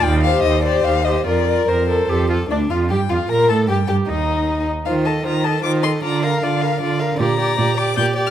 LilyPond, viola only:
\new Staff \with { instrumentName = "Viola" } { \time 3/4 \key bes \major \tempo 4 = 153 r8 g'4 g'4 g'8 | f'8 f'8 bes'8 a'8 g'8 f'8 | d'8 f'8 g'8 f'8 bes'8 a'8 | g'8 g'8 ees'4. r8 |
f'8 a'8 f'8 a'8 f'8 a'8 | f'8 bes'8 f'8 bes'8 f'8 bes'8 | \key g \dorian g'8 g'8 g'8 g'8 g'8 g'8 | }